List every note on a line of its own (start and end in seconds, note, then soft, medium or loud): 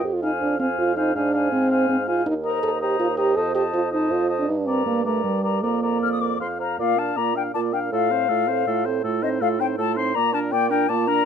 0.04 0.37 F2 medium
0.04 0.16 G4 medium
0.14 0.22 F4 medium
0.23 0.31 D#4 medium
0.23 0.59 C5 soft
0.23 0.59 F5 soft
0.23 0.59 G#5 soft
0.41 0.74 F2 soft
0.41 0.59 D4 medium
0.59 0.68 C4 medium
0.59 0.96 C5 soft
0.59 0.95 F5 soft
0.59 0.96 G#5 soft
0.78 1.10 F2 medium
0.78 0.96 F4 medium
0.96 1.14 D#4 medium
0.96 1.14 C5 soft
0.96 1.15 F5 soft
0.96 1.14 G#5 soft
1.15 1.48 G#2 medium
1.15 1.51 D4 medium
1.15 1.33 C5 soft
1.15 1.33 F5 soft
1.15 1.33 G#5 soft
1.34 1.70 C5 soft
1.34 1.70 F5 medium
1.34 1.70 G#5 soft
1.52 1.85 G#2 soft
1.52 1.88 C4 medium
1.71 2.07 C5 soft
1.71 2.07 F5 soft
1.71 2.06 G#5 soft
1.89 2.22 G#2 medium
1.89 1.98 C4 medium
2.07 2.26 F4 medium
2.07 2.26 C5 soft
2.07 2.26 F5 soft
2.07 2.25 G#5 soft
2.26 2.59 D#2 medium
2.26 2.34 D#4 medium
2.44 2.63 A#4 medium
2.44 2.80 C5 soft
2.44 2.81 D#5 soft
2.44 2.80 A#5 soft
2.63 2.96 D#2 soft
2.63 2.71 A4 medium
2.81 2.99 G4 medium
2.81 3.17 C5 soft
2.81 3.17 D#5 soft
2.81 3.17 A#5 soft
3.00 3.32 D#2 medium
3.00 3.08 F4 medium
3.17 3.37 G4 medium
3.17 3.36 C5 soft
3.17 3.36 D#5 soft
3.17 3.36 A#5 soft
3.36 3.70 F2 medium
3.36 3.54 A4 medium
3.36 3.55 C5 soft
3.36 3.55 D#5 medium
3.36 3.54 A5 soft
3.55 3.63 G4 medium
3.55 3.92 C5 soft
3.55 3.91 D#5 soft
3.55 3.92 A5 soft
3.74 4.07 F2 soft
3.74 3.82 F4 medium
3.92 4.13 D#4 medium
3.92 4.29 C5 soft
3.92 4.29 D#5 soft
3.92 4.29 A5 soft
4.11 4.44 F2 medium
4.11 4.30 F4 medium
4.29 4.48 C5 soft
4.29 4.48 D#5 soft
4.29 4.48 A5 soft
4.39 4.50 D4 medium
4.48 4.82 G2 medium
4.48 4.60 D#4 medium
4.59 4.68 D4 medium
4.67 4.85 C4 medium
4.67 5.04 A#4 soft
4.67 5.04 D5 soft
4.67 5.04 A#5 soft
4.86 5.20 G2 soft
4.86 5.04 A#3 medium
5.05 5.23 A3 medium
5.05 5.43 A#4 soft
5.05 5.43 D5 soft
5.05 5.43 A#5 soft
5.24 5.58 G2 soft
5.24 5.64 G3 soft
5.43 5.62 A#4 soft
5.43 5.62 D5 soft
5.43 5.63 A#5 soft
5.63 5.97 F2 soft
5.63 6.40 A#3 soft
5.63 5.82 A#4 soft
5.63 5.82 D5 soft
5.63 5.82 A#5 soft
5.83 6.20 A#4 soft
5.83 6.21 D5 soft
5.83 5.98 A#5 soft
6.02 6.36 F2 soft
6.02 6.11 F6 soft
6.12 6.22 D#6 soft
6.20 6.40 A#4 soft
6.20 6.40 D5 soft
6.20 6.40 D6 soft
6.40 6.75 F2 soft
6.40 6.59 C5 soft
6.40 6.60 F5 soft
6.40 6.47 C6 soft
6.59 6.79 C5 soft
6.59 6.79 F5 soft
6.59 6.79 A#5 soft
6.79 7.13 A#2 medium
6.79 7.00 A#3 soft
6.79 7.00 F4 soft
6.79 7.00 D5 soft
6.79 7.00 F5 medium
6.98 7.19 D4 soft
6.98 7.19 A#4 soft
6.98 7.18 F5 soft
6.98 7.19 A5 medium
7.17 7.50 A#2 soft
7.17 7.37 A#3 soft
7.17 7.37 F4 soft
7.17 7.37 D5 soft
7.17 7.36 A#5 medium
7.35 7.54 D4 soft
7.35 7.53 A#4 soft
7.35 7.54 F5 soft
7.35 7.43 G5 medium
7.54 7.88 A#2 soft
7.54 7.75 A#3 soft
7.54 7.75 F4 soft
7.54 7.75 D5 soft
7.54 7.60 A5 medium
7.73 7.92 D4 soft
7.73 7.90 A#4 soft
7.73 7.92 F5 soft
7.73 7.79 G5 soft
7.91 8.25 A2 medium
7.91 8.12 A3 soft
7.91 8.12 F4 soft
7.91 8.13 A4 soft
7.91 8.84 F5 medium
8.10 8.31 C4 soft
8.10 8.31 A4 soft
8.10 8.30 C5 soft
8.29 8.62 A2 soft
8.29 8.50 A3 soft
8.29 8.50 F4 soft
8.29 8.49 A4 soft
8.48 8.67 C4 soft
8.48 8.67 A4 soft
8.48 8.67 C5 soft
8.67 9.00 A2 medium
8.67 8.87 A3 soft
8.67 8.88 F4 soft
8.67 8.87 A4 soft
8.85 9.03 C4 soft
8.85 9.03 A4 soft
8.85 9.03 C5 soft
9.04 9.37 A2 medium
9.04 9.24 A3 soft
9.04 9.23 F4 soft
9.04 9.24 A4 soft
9.22 9.43 C4 soft
9.22 9.42 D#4 soft
9.22 9.43 C5 soft
9.22 9.29 D#5 medium
9.40 9.74 A2 medium
9.40 9.62 A3 soft
9.40 9.61 F4 soft
9.40 9.62 A4 soft
9.40 9.48 F5 medium
9.59 9.78 C4 soft
9.59 9.77 D#4 soft
9.59 9.77 C5 soft
9.59 9.66 G5 medium
9.78 10.11 A2 soft
9.78 9.98 A3 soft
9.78 9.98 F4 soft
9.78 9.98 A4 soft
9.78 9.96 A5 medium
9.96 10.15 C4 soft
9.96 10.15 D#4 soft
9.96 10.15 C5 soft
9.96 10.16 C6 medium
10.15 10.48 A#2 medium
10.15 10.35 A#3 soft
10.15 10.34 F4 soft
10.15 10.36 D5 medium
10.15 10.33 A#5 medium
10.33 10.53 D4 soft
10.33 10.54 D4 soft
10.33 10.54 A#4 medium
10.33 10.39 A5 medium
10.51 10.85 A#2 medium
10.51 10.72 A#3 soft
10.51 10.72 F4 medium
10.51 10.72 D5 soft
10.51 10.70 G5 medium
10.70 10.89 D4 soft
10.70 10.88 A#4 soft
10.70 10.90 G5 medium
10.89 11.22 A#2 medium
10.89 11.09 A#3 soft
10.89 11.09 F4 soft
10.89 11.10 D5 soft
10.89 11.09 A5 medium
11.07 11.25 D4 medium
11.07 11.25 D4 soft
11.07 11.25 A#4 medium
11.07 11.25 A#5 medium